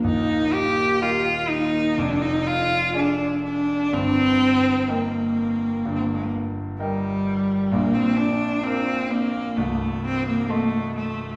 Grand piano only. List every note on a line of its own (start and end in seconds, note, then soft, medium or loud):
0.04 1.92 D#1 medium
0.04 1.93 D#2 medium
1.01 1.92 G4 soft
1.01 1.93 A#4 soft
1.01 1.93 D#5 soft
1.98 3.89 F1 medium
1.98 3.89 F2 medium
2.94 3.88 G#4 soft
2.94 3.88 D5 soft
2.94 3.89 G#5 medium
3.93 5.81 G1 medium
3.93 5.81 G2 medium
4.88 5.81 A#4 soft
4.88 5.81 D#5 soft
4.88 5.81 G5 medium
5.85 7.68 G1 medium
5.85 7.68 G2 medium
6.79 7.68 A#4 soft
6.79 7.68 D#5 soft
6.79 7.68 G5 soft
7.72 9.54 A#1 medium
7.72 9.55 A#2 medium
8.66 9.54 A#4 soft
8.66 9.55 F5 soft
9.57 11.36 C1 medium
9.57 11.36 C2 medium
10.50 11.36 A4 soft
10.50 11.36 D#5 soft
10.50 11.36 C6 soft